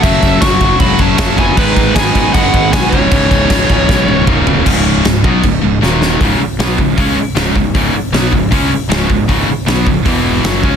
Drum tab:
CC |xxxxxxxx|xxxxxxxx|xxxx----|x-x-x---|
HH |--------|--------|--------|--------|
SD |--o---o-|--o---o-|--o-o---|--o---oo|
T1 |--------|--------|-----o--|--------|
T2 |--------|--------|------o-|--------|
FT |--------|--------|-------o|--------|
BD |oooooooo|oooooooo|ooooo-o-|o--oo---|

CC |--------|--------|--------|
HH |o-o-o-o-|o-o-o-o-|o-o-o-o-|
SD |--o---o-|--o---o-|--o---o-|
T1 |--------|--------|--------|
T2 |--------|--------|--------|
FT |--------|--------|--------|
BD |o--oo--o|o--oo--o|o--oo--o|